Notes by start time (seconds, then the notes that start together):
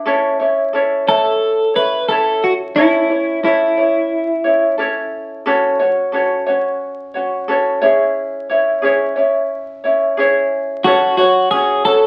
0.06 C#4 E4 A4 C#5
0.40 C#4 E4 C#5
0.73 C#4 E4 A4 C#5
1.07 C#4 E4 A4 C#5
1.74 C#4 E4 B4 C#5
2.08 C#4 E4 A4 C#5
2.44 F#4
2.76 C#4 E4 A4 C#5
3.10 C#4 E4 C#5
3.43 C#4 E4 A4 C#5
3.77 C#4 E4 C#5
4.44 C#4 E4 C#5
4.78 C#4 E4 A4 C#5
5.46 C#4 F#4 A4 C#5
5.79 C#4 F#4 C#5
6.12 C#4 F#4 A4 C#5
6.46 C#4 F#4 C#5
7.14 C#4 F#4 C#5
7.48 C#4 F#4 A4 C#5
7.82 C#4 E4 G#4 C#5
8.49 C#4 E4 C#5
8.82 C#4 E4 G#4 C#5
9.16 C#4 E4 C#5
9.84 C#4 E4 C#5
10.17 C#4 E4 G#4 C#5
10.84 C#4 F#4 A4 C#5
11.17 C#4 F#4 C#5
11.51 C#4 F#4 G#4 C#5
11.85 C#4 F#4 A4 C#5